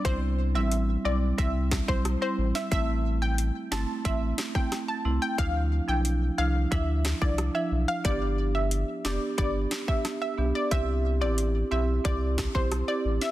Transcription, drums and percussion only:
0.05 kick loud
0.05 closed hi-hat medium
0.72 closed hi-hat medium
1.38 kick loud
1.38 closed hi-hat medium
1.71 kick medium
1.71 cross-stick loud
1.71 snare loud
1.88 kick medium
2.05 cross-stick medium
2.05 closed hi-hat medium
2.55 snare medium
2.72 kick loud
2.72 closed hi-hat medium
3.38 closed hi-hat medium
3.72 cross-stick medium
3.72 snare loud
4.05 kick loud
4.05 closed hi-hat medium
4.38 cross-stick medium
4.38 snare loud
4.55 kick medium
4.72 cross-stick loud
4.72 snare medium
4.72 closed hi-hat medium
5.38 kick loud
5.38 closed hi-hat medium
6.05 closed hi-hat medium
6.72 kick loud
6.72 closed hi-hat medium
7.05 cross-stick loud
7.05 snare loud
7.22 kick medium
7.38 cross-stick loud
7.38 closed hi-hat medium
8.05 kick loud
8.05 closed hi-hat medium
8.71 closed hi-hat medium
9.05 cross-stick medium
9.05 snare loud
9.38 kick loud
9.38 closed hi-hat medium
9.71 cross-stick medium
9.71 snare loud
9.88 kick medium
10.05 cross-stick loud
10.05 snare medium
10.05 closed hi-hat medium
10.71 kick loud
10.71 closed hi-hat medium
11.38 closed hi-hat medium
12.05 kick loud
12.05 closed hi-hat medium
12.38 kick medium
12.38 cross-stick loud
12.38 snare loud
12.55 kick medium
12.72 cross-stick loud
12.72 closed hi-hat medium
13.21 snare medium

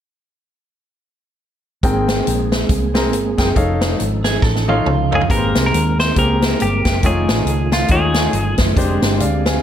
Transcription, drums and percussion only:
1.83 kick loud
1.83 closed hi-hat medium
2.09 snare medium
2.09 closed hi-hat medium
2.27 closed hi-hat medium
2.52 snare loud
2.52 closed hi-hat medium
2.69 kick medium
2.69 closed hi-hat medium
2.95 snare loud
2.95 closed hi-hat medium
3.13 closed hi-hat medium
3.38 kick medium
3.38 snare loud
3.38 closed hi-hat medium
3.56 kick medium
3.56 closed hi-hat medium
3.81 snare loud
3.81 closed hi-hat medium
4.00 closed hi-hat medium
4.24 snare loud
4.24 closed hi-hat medium
4.42 kick loud
4.42 snare medium
4.56 snare soft
4.69 high tom medium
4.86 mid tom medium
5.12 floor tom medium
5.21 floor tom medium
5.30 kick medium
5.30 closed hi-hat medium
5.55 snare medium
5.55 closed hi-hat medium
5.74 closed hi-hat medium
6.00 snare loud
6.00 closed hi-hat medium
6.16 kick medium
6.16 closed hi-hat medium
6.42 snare loud
6.42 closed hi-hat medium
6.60 closed hi-hat medium
6.85 kick medium
6.85 snare loud
6.85 closed hi-hat medium
7.03 kick loud
7.03 closed hi-hat medium
7.29 snare loud
7.29 closed hi-hat medium
7.47 closed hi-hat medium
7.72 snare loud
7.72 closed hi-hat medium
7.88 kick medium
7.88 closed hi-hat medium
8.14 snare medium
8.14 closed hi-hat medium
8.33 closed hi-hat medium
8.58 kick medium
8.58 snare medium
8.58 closed hi-hat medium
8.77 kick loud
8.77 closed hi-hat medium
9.02 snare loud
9.02 closed hi-hat medium
9.20 closed hi-hat medium
9.46 snare loud
9.46 closed hi-hat medium

